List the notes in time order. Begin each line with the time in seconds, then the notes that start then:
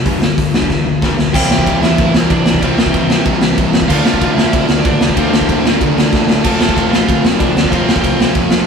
0.05 G1 G2 D3 G3, kick, open hi-hat
0.21 G1 G2 D3, snare
0.37 G1 G2 D3, kick, open hi-hat
0.53 G1 G2 D3 G3, snare
0.62 kick
0.70 G1 G2 D3, kick, snare
0.86 G1 G2 D3
1.01 G1 G2 D3 G3, kick, snare
1.17 B1 G2 D3, snare
1.33 C2 C3 E3 G3 C4 E4 G4 G5, kick, crash
1.50 C2, snare
1.58 kick
1.67 C2, kick, ride
1.81 E2 C3 G3 C4 E4 E5, snare
1.98 A2, kick, ride
2.14 C2, snare
2.30 G1 D4 D5, kick, ride
2.46 A1, snare
2.54 kick
2.61 C2 C3 E3 G3 C4 E4 C5, kick, ride
2.78 C2 C4 C5, snare
2.86 kick
2.94 G2, kick, ride
3.09 C3 G3 C4, snare
3.25 C2, kick, ride
3.42 C2, snare
3.58 C2, kick, ride
3.73 G2, snare
3.82 kick
3.88 D2 D3 A3 D4 F4 F5, kick, crash
4.05 D2, snare
4.14 kick
4.21 D2, kick, ride
4.34 F2 A3 D4 E4 E5
4.38 D3, snare
4.53 C3, kick, ride
4.69 D2, snare
4.80 D5
4.84 A1 D4, kick, ride
5.00 C2, snare
5.09 kick
5.13 D2 D3 C4 C5, kick, ride
5.17 A3 D4 F4
5.30 D2 C4 C5, snare
5.41 kick
5.49 A2, kick, ride
5.64 D3 A3 D4, snare
5.81 D2, kick, ride
5.96 D2, snare
6.13 D2, kick, snare
6.28 A2, snare
6.43 F1 F2 C3 F3 A3 C4 F4 A4 A5, kick, crash
6.61 F1, snare
6.69 kick
6.77 F1, kick, ride
6.90 A1 F2 C3 F3 F4 F5, snare
7.09 D2, kick, ride
7.23 F1, snare
7.39 C2 D4 D5, kick, ride
7.55 D2, snare
7.64 kick
7.70 F1 F2 C3 F3 A3 C4 F4 C5, kick, ride
7.86 F1 C4 C5, snare
7.96 kick
8.04 C2, kick, ride
8.18 F2 C3 F3, snare
8.35 F1, kick, ride
8.51 F1, snare